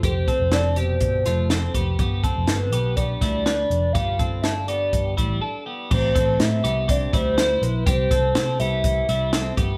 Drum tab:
CC |--------|--------|--------|x-------|
HH |xxxxxxxx|xxxxxxxx|xxxxxx--|-xxxxxxx|
SD |--o--oo-|--o--oo-|--o-----|--o---o-|
BD |oo--o--o|oo--oo--|oo--oo--|oo--oo--|

CC |--------|
HH |xxxxxxxx|
SD |--o---o-|
BD |oo--o--o|